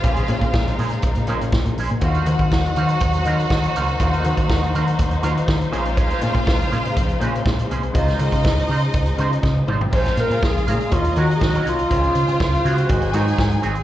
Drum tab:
CC |----------------|----------------|----------------|----------------|
HH |xxxx-xoxxxxx-xox|xxxx-xxxxxxx-xxx|xxxx-xxxxxxx-xxx|xxxx-xxxxxxx-xxx|
SD |----o-------o---|----o-------o---|----o-------o---|----o-------o---|
T2 |----------------|----------------|----------------|----------------|
FT |----------------|----------------|----------------|----------------|
BD |o--oo---o---o---|o--oo---o---o---|o--oo---o---o---|o--oo---o---o---|

CC |----------------|x---------------|----------------|
HH |xxxx-xoxxxxx----|-xxx-xxxxxxx-xxx|xxxx-xxxxxxx-xxx|
SD |-o--o-------o---|-o--o-------o---|----o-------o---|
T2 |--------------o-|----------------|----------------|
FT |---------------o|----------------|----------------|
BD |o--oo---o---o---|o---o---o---o---|o---o---o---o---|